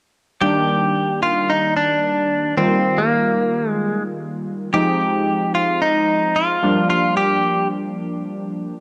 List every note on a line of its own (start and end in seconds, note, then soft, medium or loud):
0.41 2.53 D#3 medium
0.41 2.53 G3 medium
0.41 2.54 A#3 medium
0.41 2.54 D4 medium
0.41 1.22 G4 loud
1.23 1.50 F4 medium
1.50 1.76 D#4 medium
1.77 2.57 D4 medium
2.57 4.69 D#3 medium
2.57 4.70 G3 medium
2.57 4.70 A#3 medium
2.57 2.99 C4 medium
2.57 4.70 F4 medium
2.98 3.70 A#3 medium
3.70 4.02 G#3 medium
4.73 6.59 F3 medium
4.73 6.59 G#3 medium
4.73 6.59 C4 medium
4.73 6.59 D#4 medium
4.73 5.54 G4 loud
5.55 5.80 F4 medium
5.82 6.37 D#4 medium
6.36 6.89 F4 medium
6.62 8.75 F3 medium
6.62 8.75 G3 medium
6.62 8.75 A#3 medium
6.62 8.75 D4 medium
6.90 7.17 F4 medium
7.17 7.67 G4 medium